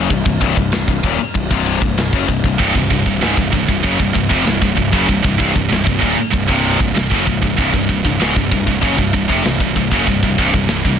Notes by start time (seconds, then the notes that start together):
0.10 C1 C2 G2, kick, ride
0.25 C1 C2 G2, kick
0.40 C1 C2 G2, kick, ride
0.57 C1 C2 G2, kick
0.72 C1 C2 G2, snare, ride
0.88 C1 C2 G2, kick
1.03 D#1 D#2 A#2, kick, ride
1.20 muted distorted electric guitar stroke, muted picked electric bass stroke
1.34 C1 C2 G2, kick, ride
1.50 C1 C2 G2 C3, kick
1.66 ride
1.82 C1 C2 G2, kick
1.97 C1 C2 G2, snare, ride
2.13 F#1 F#2 C#3, kick
2.28 C1 C2 G2, kick, ride
2.44 C1 C2 G2, kick
2.59 C1 C2 G2, kick, crash
2.75 C1 C2 G2, kick
2.90 C1 C2 G2, kick, ride
3.06 C1 C2 G2, kick
3.22 C#1 C#2 G#2, snare, ride
3.37 C1 C2 G2, kick
3.53 C1 C2 G2, kick, ride
3.68 C1 C2 G2, kick
3.84 F#1 F#2 C#3, kick, ride
3.99 C1 C2 G2, kick
4.14 C1 C2 G2, kick, ride
4.29 F1 F2 C3, kick
4.45 C1 C2 G2, snare, ride
4.61 C1 C2 G2, kick
4.76 C1 C2 G2, kick, ride
4.92 F#1 F#2 C#3, kick
5.08 C1 C2 G2, kick, ride
5.24 C1 C2 G2, kick
5.39 C1 C2 G2, kick, ride
5.55 C1 C2 G2, kick
5.71 C1 C2 G2, snare, ride
5.85 C1 C2 G2, kick
6.00 D#1 D#2 A#2, kick, ride
6.17 muted distorted electric guitar stroke, muted picked electric bass stroke
6.33 C1 C2 G2, kick, ride
6.48 C1 C2 G2 C3, kick
6.65 ride
6.80 C1 C2 G2, kick
6.95 C1 C2 G2, snare, ride
7.11 F#1 F#2 C#3, kick
7.27 C1 C2 G2, kick, ride
7.42 C1 C2 G2, kick
7.58 C1 C2 G2, kick, ride
7.74 C1 C2 G2, kick
7.89 C1 C2 G2, kick, ride
8.05 C1 C2 G2, kick
8.20 C#1 C#2 G#2, snare, ride
8.36 C1 C2 G2, kick
8.52 C1 C2 G2, kick, ride
8.66 C1 C2 G2, kick
8.81 F#1 F#2 C#3, kick, ride
8.97 C1 C2 G2, kick
9.13 C1 C2 G2, kick, ride
9.28 F1 F2 C3, kick
9.44 C1 C2 G2, snare, ride
9.60 C1 C2 G2, kick
9.76 C1 C2 G2, kick, ride
9.92 F#1 F#2 C#3, kick
10.07 C1 C2 G2, kick, ride
10.23 C1 C2 G2, kick
10.38 C1 C2 G2, kick, ride
10.54 C1 C2 G2, kick
10.68 C1 C2 G2, snare, ride
10.85 C1 C2 G2, kick